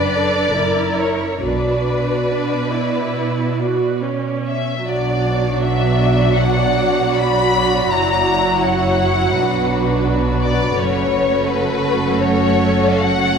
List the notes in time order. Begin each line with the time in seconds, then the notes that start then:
Already playing: F#1 F#2 D4 B4 D5
0.15 A4
0.55 F#1 F#2 E4 A#4
0.99 C#5
1.40 B1 B2 D4 F#4 B4 D5
2.28 D4
2.71 E4
3.58 F#4
4.01 C#4
4.48 E5
4.85 B1 B2 F#3 D4 F#4 D5
5.63 E5
6.35 F#5
7.16 B5
7.88 F#1 F#2 E4 A#5
8.62 C#5 F#5
9.35 B1 B2 D4 B4
10.43 D5
10.78 F#1 F#2 A3 C#4 F#4 C#5
11.48 A4 B4
12.20 C#5
12.99 F#5